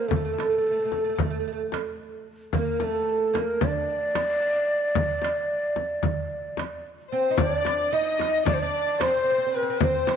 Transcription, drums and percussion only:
0.11 frame drum, darbuka dum
0.38 darbuka tek, frame drum
0.92 frame drum
1.18 frame drum, darbuka dum
1.72 darbuka tek, frame drum
2.01 darbuka ka
2.53 frame drum, darbuka dum
2.80 frame drum
3.35 darbuka tek, frame drum
3.61 frame drum, darbuka dum
4.15 darbuka tek, frame drum
4.43 darbuka ka
4.95 frame drum, darbuka dum
5.22 darbuka tek, frame drum
5.76 frame drum
6.03 frame drum, darbuka dum
6.57 darbuka tek, frame drum
6.87 darbuka ka
7.13 darbuka ka
7.38 frame drum, darbuka dum
7.65 darbuka tek, frame drum
8.19 darbuka tek, frame drum
8.46 frame drum, darbuka dum
9.01 darbuka tek, frame drum
9.28 darbuka ka
9.80 frame drum, darbuka dum
10.07 darbuka tek, frame drum

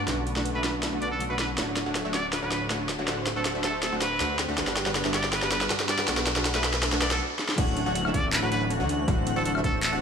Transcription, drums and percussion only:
0.08 snare, closed hi-hat
0.27 closed hi-hat
0.36 snare
0.45 closed hi-hat
0.64 snare, closed hi-hat
0.83 snare, closed hi-hat
1.02 closed hi-hat
1.20 closed hi-hat
1.39 snare, closed hi-hat
1.58 snare, closed hi-hat
1.77 snare, closed hi-hat
1.95 snare, closed hi-hat
2.14 snare, closed hi-hat
2.33 snare, closed hi-hat
2.52 snare, closed hi-hat
2.70 snare, closed hi-hat
2.89 snare, closed hi-hat
3.08 snare, closed hi-hat
3.27 snare, closed hi-hat
3.45 snare, closed hi-hat
3.64 snare, closed hi-hat
3.83 snare, closed hi-hat
4.02 snare, closed hi-hat
4.20 snare, closed hi-hat
4.39 snare, closed hi-hat
4.58 snare, closed hi-hat
4.67 snare
4.77 snare, closed hi-hat
4.86 snare
4.95 snare, closed hi-hat
5.05 snare
5.14 snare, closed hi-hat
5.24 snare
5.33 snare, closed hi-hat
5.42 snare
5.52 snare, closed hi-hat
5.61 snare
5.70 snare, closed hi-hat
5.80 snare
5.89 snare, closed hi-hat
5.99 snare
6.08 snare, closed hi-hat
6.17 snare
6.27 snare, closed hi-hat
6.36 snare
6.45 snare, closed hi-hat
6.55 snare
6.64 snare, closed hi-hat
6.74 snare
6.83 snare, closed hi-hat
6.92 snare
7.02 snare, closed hi-hat
7.11 snare
7.39 snare
7.49 snare
7.58 kick, closed hi-hat, crash
7.77 closed hi-hat
7.95 closed hi-hat
8.05 high woodblock
8.14 kick, closed hi-hat
8.33 clap, closed hi-hat
8.52 closed hi-hat
8.70 closed hi-hat
8.89 closed hi-hat
9.08 kick, closed hi-hat
9.27 closed hi-hat
9.45 closed hi-hat
9.55 high woodblock
9.64 kick, closed hi-hat
9.83 clap, closed hi-hat

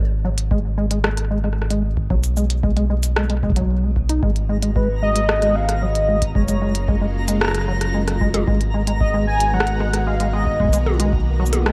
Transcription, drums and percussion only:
0.38 closed hi-hat
0.51 kick
0.91 closed hi-hat
1.04 cross-stick
1.17 cross-stick, closed hi-hat
1.44 cross-stick
1.53 cross-stick
1.62 cross-stick
1.70 closed hi-hat
1.97 kick
2.10 kick
2.24 closed hi-hat, cabasa
2.37 cabasa
2.50 closed hi-hat
2.63 kick
2.77 closed hi-hat
3.03 closed hi-hat, cabasa
3.16 cross-stick
3.30 closed hi-hat
3.43 kick
3.50 kick
3.52 kick
3.56 closed hi-hat
3.61 kick
3.96 kick
4.09 closed hi-hat
4.23 kick
4.36 closed hi-hat
4.63 closed hi-hat
4.76 kick
5.16 closed hi-hat
5.29 cross-stick
5.42 cross-stick, closed hi-hat
5.47 cross-stick
5.51 cross-stick
5.56 cross-stick
5.60 cross-stick
5.64 cross-stick
5.69 cross-stick, closed hi-hat
5.95 closed hi-hat
6.22 kick, closed hi-hat
6.35 kick
6.48 closed hi-hat, cabasa
6.75 closed hi-hat
6.88 kick
7.28 closed hi-hat, cabasa
7.41 cross-stick
7.45 cross-stick
7.48 cross-stick
7.51 cross-stick
7.55 cross-stick, closed hi-hat
7.58 cross-stick
7.61 cross-stick
7.64 cross-stick
7.81 cross-stick, closed hi-hat
8.08 cross-stick, closed hi-hat
8.21 kick
8.34 closed hi-hat, high tom
8.48 kick
8.61 closed hi-hat
8.87 closed hi-hat
9.01 kick
9.40 closed hi-hat
9.60 cross-stick
9.67 closed hi-hat
9.80 cross-stick
9.93 cross-stick, closed hi-hat
10.20 closed hi-hat
10.47 kick
10.60 kick
10.64 kick
10.69 kick
10.73 closed hi-hat, cabasa
10.86 high tom
11.00 closed hi-hat
11.13 kick
11.46 cabasa
11.53 closed hi-hat, high tom
11.66 cross-stick

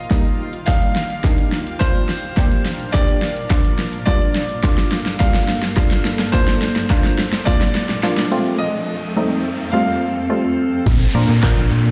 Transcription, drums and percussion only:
0.11 kick, snare, closed hi-hat
0.25 closed hi-hat
0.53 closed hi-hat
0.67 kick, snare, closed hi-hat
0.82 closed hi-hat
0.96 snare
1.10 closed hi-hat
1.24 kick, snare, closed hi-hat
1.38 closed hi-hat
1.52 snare
1.67 closed hi-hat
1.81 kick, snare, closed hi-hat
1.95 closed hi-hat
2.09 snare, open hi-hat
2.23 closed hi-hat
2.37 kick, snare, clap, closed hi-hat
2.51 closed hi-hat
2.66 snare, open hi-hat
2.80 closed hi-hat
2.94 kick, snare, clap, closed hi-hat
3.08 closed hi-hat
3.22 snare, open hi-hat
3.37 closed hi-hat
3.50 kick, snare, clap, closed hi-hat
3.65 closed hi-hat
3.79 snare, open hi-hat
3.93 closed hi-hat
4.07 kick, snare, closed hi-hat
4.22 closed hi-hat
4.35 snare, open hi-hat
4.49 closed hi-hat
4.64 kick, snare, clap, closed hi-hat
4.78 snare, closed hi-hat
4.92 snare, open hi-hat
5.06 snare, closed hi-hat
5.20 kick, snare, clap, closed hi-hat
5.34 snare, closed hi-hat
5.48 snare, open hi-hat
5.63 snare, closed hi-hat
5.77 kick, snare, clap, closed hi-hat
5.91 snare, closed hi-hat
6.05 snare, open hi-hat
6.19 snare, closed hi-hat
6.33 kick, snare, closed hi-hat
6.48 snare, closed hi-hat
6.62 snare, open hi-hat
6.76 snare, closed hi-hat
6.90 kick, snare, clap, closed hi-hat
7.04 snare, closed hi-hat
7.19 snare, open hi-hat
7.33 snare, closed hi-hat
7.47 kick, snare, clap, closed hi-hat
7.61 snare, closed hi-hat
7.75 snare, open hi-hat
7.89 snare, closed hi-hat
8.03 snare, clap, closed hi-hat
8.17 snare, closed hi-hat
8.32 open hi-hat
8.46 closed hi-hat
10.87 kick, closed hi-hat, crash, shaker
11.01 closed hi-hat, shaker
11.15 open hi-hat, shaker
11.29 closed hi-hat, shaker
11.43 kick, snare, clap, closed hi-hat, shaker
11.57 closed hi-hat, shaker
11.72 open hi-hat, shaker
11.85 closed hi-hat, shaker

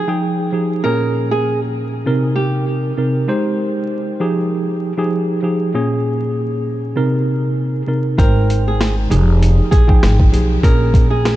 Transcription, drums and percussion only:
8.19 kick, closed hi-hat
8.50 closed hi-hat
8.81 snare, closed hi-hat
9.12 closed hi-hat
9.43 closed hi-hat
9.72 kick, closed hi-hat
9.89 kick
10.03 snare, closed hi-hat
10.20 kick
10.34 closed hi-hat
10.63 kick, closed hi-hat
10.94 kick, closed hi-hat
11.25 snare, closed hi-hat

